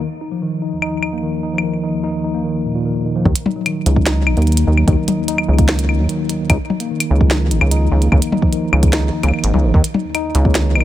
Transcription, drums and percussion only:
0.82 claves medium
1.03 claves medium
1.58 claves medium
3.25 kick loud
3.36 closed hi-hat loud
3.46 high tom medium
3.66 closed hi-hat medium
3.66 claves medium
3.86 closed hi-hat medium
3.96 kick loud
4.06 snare loud
4.06 closed hi-hat medium
4.27 claves medium
4.37 closed hi-hat soft
4.42 closed hi-hat soft
4.47 closed hi-hat soft
4.52 closed hi-hat soft
4.57 closed hi-hat loud
4.77 claves medium
4.88 kick loud
4.88 closed hi-hat medium
5.08 closed hi-hat medium
5.08 high tom medium
5.28 closed hi-hat medium
5.38 claves medium
5.59 kick loud
5.59 closed hi-hat medium
5.69 snare loud
5.79 closed hi-hat medium
5.89 claves medium
6.09 closed hi-hat medium
6.29 closed hi-hat medium
6.50 kick loud
6.50 closed hi-hat loud
6.50 claves medium
6.70 high tom medium
6.80 closed hi-hat medium
7.00 closed hi-hat medium
7.00 claves medium
7.21 kick loud
7.31 snare loud
7.51 closed hi-hat medium
7.61 claves medium
7.71 closed hi-hat loud
8.02 closed hi-hat medium
8.12 kick loud
8.12 claves soft
8.22 closed hi-hat medium
8.32 high tom medium
8.42 kick medium
8.53 closed hi-hat medium
8.73 claves medium
8.83 kick loud
8.83 closed hi-hat medium
8.93 snare loud
8.93 closed hi-hat medium
9.23 closed hi-hat medium
9.23 claves soft
9.28 claves soft
9.34 claves soft
9.39 claves soft
9.44 closed hi-hat medium
9.54 high tom medium
9.74 kick loud
9.84 closed hi-hat medium
9.94 high tom medium
10.15 closed hi-hat medium
10.15 claves soft
10.35 closed hi-hat medium
10.45 kick loud
10.55 snare loud
10.55 closed hi-hat medium
10.75 claves medium
10.80 claves medium

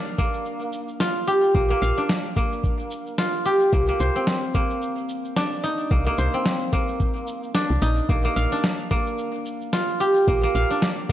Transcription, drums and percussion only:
0.07 cabasa soft
0.18 kick medium
0.18 cabasa medium
0.34 cabasa soft
0.46 cabasa soft
0.61 cabasa soft
0.73 cabasa medium
0.89 cabasa soft
1.00 snare medium
1.00 cabasa soft
1.16 cabasa soft
1.27 cabasa medium
1.43 cabasa soft
1.55 kick loud
1.55 cabasa soft
1.70 cabasa soft
1.82 cabasa medium
1.98 cabasa soft
2.09 snare loud
2.09 cabasa soft
2.25 cabasa soft
2.36 kick loud
2.36 cabasa medium
2.52 cabasa soft
2.64 kick medium
2.64 cabasa soft
2.79 cabasa soft
2.91 cabasa medium
3.07 cabasa soft
3.18 snare medium
3.18 cabasa soft
3.34 cabasa soft
3.45 cabasa medium
3.61 cabasa soft
3.73 kick loud
3.73 cabasa soft
3.88 cabasa soft
4.00 cabasa medium
4.16 cabasa soft
4.27 snare medium
4.27 cabasa soft
4.43 cabasa soft
4.54 kick loud
4.54 cabasa medium
4.70 cabasa soft
4.82 cabasa soft
4.98 cabasa soft
5.09 cabasa medium
5.25 cabasa soft
5.36 snare medium
5.36 cabasa soft
5.52 cabasa soft
5.64 cabasa medium
5.79 cabasa soft
5.91 kick loud
5.91 cabasa soft
6.07 cabasa soft
6.18 cabasa medium
6.34 cabasa soft
6.46 snare medium
6.46 cabasa soft
6.61 cabasa soft
6.73 kick loud
6.73 cabasa medium
6.88 cabasa soft
7.00 kick loud
7.00 cabasa soft
7.16 cabasa soft
7.27 cabasa medium
7.43 cabasa soft
7.55 snare medium
7.55 cabasa soft
7.70 cabasa soft
7.82 cabasa medium
7.98 cabasa soft
8.09 kick loud
8.09 cabasa soft
8.25 cabasa soft
8.36 cabasa medium
8.52 cabasa soft
8.64 snare medium
8.64 cabasa soft
8.79 cabasa soft
8.91 kick medium
8.91 cabasa medium
9.07 cabasa soft
9.18 cabasa soft
9.34 cabasa soft
9.46 cabasa medium
9.61 cabasa soft
9.73 snare medium
9.73 cabasa soft
9.89 cabasa soft
10.00 cabasa medium
10.16 cabasa soft
10.28 kick loud
10.28 cabasa soft
10.44 cabasa soft
10.55 cabasa medium
10.71 cabasa soft
10.82 snare medium
10.82 cabasa soft
10.98 cabasa soft

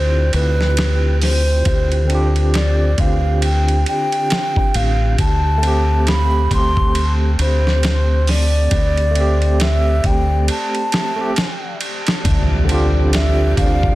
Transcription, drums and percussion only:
0.33 ride medium
0.61 snare soft
0.77 snare loud
0.77 ride medium
1.22 snare soft
1.22 open hi-hat medium
1.65 kick medium
1.65 ride medium
1.92 ride soft
2.10 ride medium
2.36 ride soft
2.54 snare loud
2.54 ride medium
2.98 kick medium
2.98 ride medium
3.42 ride medium
3.68 ride soft
3.86 ride medium
4.12 ride soft
4.30 snare loud
4.30 ride medium
4.56 kick medium
4.74 ride medium
5.18 kick loud
5.18 ride medium
5.63 ride medium
6.07 snare loud
6.07 ride medium
6.51 kick medium
6.51 ride medium
6.77 kick medium
6.95 ride medium
7.39 ride medium
7.67 snare soft
7.83 snare loud
7.83 ride medium
8.27 snare soft
8.27 open hi-hat medium
8.71 kick loud
8.71 ride medium
8.97 ride soft
9.15 ride medium
9.42 ride soft
9.60 snare loud
9.60 ride medium
10.04 kick medium
10.04 ride medium
10.48 ride medium
10.75 ride soft
10.92 snare loud
10.92 ride medium
11.36 snare loud
11.36 ride medium
11.81 ride medium
12.07 snare loud
12.07 ride medium
12.25 kick loud
12.25 ride medium
12.69 ride medium
13.13 snare loud
13.13 ride medium
13.57 kick medium
13.57 ride medium
13.83 kick loud

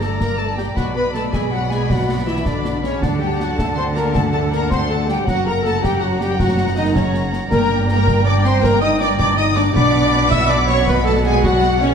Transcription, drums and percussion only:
0.01 snare soft
0.20 concert bass drum medium
0.20 snare medium
0.58 snare soft
0.77 concert bass drum medium
0.77 snare medium
1.14 snare soft
1.33 concert bass drum medium
1.33 snare medium
1.71 snare soft
1.90 concert bass drum medium
1.90 snare medium
2.45 concert bass drum medium
2.45 snare medium
2.65 snare soft
2.84 snare soft
3.02 concert bass drum medium
3.02 snare medium
3.40 snare soft
3.59 concert bass drum medium
3.59 snare medium
3.96 snare soft
4.15 concert bass drum medium
4.15 snare medium
4.52 snare soft
4.71 concert bass drum medium
4.71 snare medium
5.09 snare soft
5.27 concert bass drum medium
5.27 snare medium
5.65 snare soft
5.84 concert bass drum medium
5.84 snare medium
6.21 snare medium
6.40 concert bass drum medium
6.40 snare medium
6.95 concert bass drum medium
6.95 snare medium
7.14 snare medium
7.33 snare soft
7.51 concert bass drum medium
7.51 snare medium
7.51 crash soft
7.89 snare soft
8.07 concert bass drum medium
8.07 snare medium
8.45 snare medium
8.63 concert bass drum medium
8.63 snare medium
9.01 snare medium
9.19 concert bass drum medium
9.19 snare medium
9.56 snare soft
9.75 concert bass drum medium
9.75 snare medium
10.13 snare soft
10.31 concert bass drum medium
10.31 snare medium
10.69 snare medium
10.88 concert bass drum medium
10.88 snare medium
11.44 concert bass drum medium
11.44 snare medium
11.63 snare medium
11.81 snare soft

